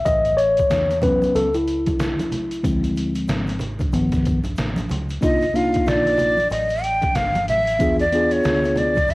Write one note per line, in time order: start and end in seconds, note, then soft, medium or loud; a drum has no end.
0.05 0.67 A1 loud
0.05 0.39 D#5 loud
0.05 kick loud
0.05 closed hi-hat medium
0.05 shaker medium
0.25 closed hi-hat soft
0.25 shaker soft
0.37 0.98 C#5 loud
0.37 closed hi-hat medium
0.37 shaker soft
0.57 kick medium
0.57 closed hi-hat soft
0.57 shaker soft
0.70 1.31 E2 medium
0.70 snare loud
0.70 closed hi-hat medium
0.70 shaker medium
0.90 closed hi-hat medium
0.90 shaker soft
1.02 1.48 F#3 medium
1.02 1.48 B3 soft
1.02 1.48 C#4 medium
1.02 1.36 B4 medium
1.02 kick medium
1.02 closed hi-hat medium
1.02 low conga medium
1.02 shaker soft
1.22 closed hi-hat soft
1.22 high conga medium
1.22 shaker soft
1.35 1.99 C#2 medium
1.35 1.55 A4 loud
1.35 closed hi-hat medium
1.35 shaker medium
1.54 3.12 E4 medium
1.54 closed hi-hat medium
1.54 shaker soft
1.67 closed hi-hat medium
1.67 shaker soft
1.86 kick medium
1.86 closed hi-hat medium
1.86 high conga medium
1.86 shaker soft
1.99 2.61 B1 loud
1.99 snare loud
1.99 closed hi-hat medium
1.99 shaker medium
2.19 closed hi-hat medium
2.19 high conga medium
2.19 shaker medium
2.32 closed hi-hat medium
2.32 low conga medium
2.32 shaker soft
2.51 closed hi-hat medium
2.51 shaker soft
2.63 3.25 D2 loud
2.63 3.56 F3 soft
2.63 3.56 G#3 medium
2.63 3.57 C4 medium
2.63 kick loud
2.63 closed hi-hat loud
2.63 shaker medium
2.84 closed hi-hat medium
2.84 shaker soft
2.96 closed hi-hat medium
2.96 shaker soft
3.15 closed hi-hat medium
3.15 shaker soft
3.28 3.90 G#1 loud
3.28 snare loud
3.28 closed hi-hat medium
3.28 shaker medium
3.47 closed hi-hat medium
3.47 shaker soft
3.59 closed hi-hat medium
3.59 low conga medium
3.59 shaker soft
3.79 kick loud
3.79 closed hi-hat soft
3.79 high conga soft
3.79 shaker soft
3.92 4.54 G1 loud
3.92 4.38 D#3 medium
3.92 4.38 F3 medium
3.92 4.39 B3 medium
3.92 closed hi-hat medium
3.92 shaker medium
4.12 kick medium
4.12 snare soft
4.12 closed hi-hat medium
4.12 shaker soft
4.25 kick loud
4.25 closed hi-hat medium
4.25 shaker soft
4.44 closed hi-hat medium
4.44 high conga medium
4.44 shaker soft
4.56 4.88 A1 medium
4.56 snare loud
4.56 closed hi-hat medium
4.56 shaker medium
4.76 closed hi-hat soft
4.76 high conga medium
4.76 shaker soft
4.90 5.21 C#2 medium
4.90 closed hi-hat medium
4.90 low conga medium
4.90 shaker soft
5.09 closed hi-hat medium
5.09 shaker soft
5.21 5.84 C2 medium
5.21 5.44 A#3 medium
5.21 5.44 D4 medium
5.21 5.45 D#4 medium
5.21 5.45 F4 medium
5.21 5.57 D#5 medium
5.21 kick loud
5.21 closed hi-hat medium
5.21 shaker medium
5.41 closed hi-hat soft
5.41 shaker soft
5.54 6.36 A#3 medium
5.54 6.36 D4 medium
5.54 6.36 D#4 medium
5.54 6.37 F4 medium
5.54 5.89 F5 medium
5.54 closed hi-hat medium
5.54 shaker soft
5.73 kick medium
5.73 closed hi-hat medium
5.73 shaker soft
5.86 6.48 A#1 loud
5.86 6.51 D5 medium
5.86 snare loud
5.86 closed hi-hat medium
5.86 shaker medium
6.05 closed hi-hat medium
6.05 shaker soft
6.18 closed hi-hat medium
6.18 low conga medium
6.18 shaker soft
6.37 closed hi-hat soft
6.37 high conga medium
6.37 shaker soft
6.50 7.00 A1 medium
6.50 6.85 D#5 medium
6.50 closed hi-hat medium
6.50 shaker medium
6.69 closed hi-hat medium
6.69 shaker soft
6.83 7.17 G5 loud
6.83 closed hi-hat medium
6.83 shaker soft
7.02 muted fingered electric bass stroke soft
7.02 kick medium
7.02 closed hi-hat soft
7.02 high conga medium
7.02 shaker soft
7.15 7.46 G1 medium
7.15 7.48 F5 medium
7.15 snare medium
7.15 closed hi-hat medium
7.15 shaker medium
7.35 closed hi-hat medium
7.35 high conga medium
7.35 shaker soft
7.48 7.78 A1 medium
7.48 7.96 E5 loud
7.48 closed hi-hat medium
7.48 low conga medium
7.48 shaker soft
7.67 closed hi-hat medium
7.67 shaker soft
7.79 8.41 E2 loud
7.79 8.02 B3 medium
7.79 8.02 D4 medium
7.79 8.03 F4 medium
7.79 8.03 G#4 medium
7.79 kick loud
7.79 closed hi-hat loud
7.79 shaker medium
7.99 8.33 D5 medium
7.99 closed hi-hat soft
7.99 shaker soft
8.12 8.94 B3 medium
8.12 8.94 D4 medium
8.12 8.95 F4 medium
8.12 8.95 G#4 medium
8.12 closed hi-hat medium
8.12 shaker soft
8.30 8.79 C#5 medium
8.30 closed hi-hat medium
8.30 shaker soft
8.43 9.06 D2 medium
8.43 snare loud
8.43 closed hi-hat medium
8.43 shaker medium
8.63 closed hi-hat medium
8.63 shaker soft
8.76 9.12 D5 medium
8.76 closed hi-hat medium
8.76 low conga medium
8.76 shaker soft
8.95 kick medium
8.95 closed hi-hat soft
8.95 high conga soft
8.95 shaker soft
9.08 9.14 E2 medium
9.08 9.14 E5 loud
9.08 closed hi-hat medium
9.08 shaker medium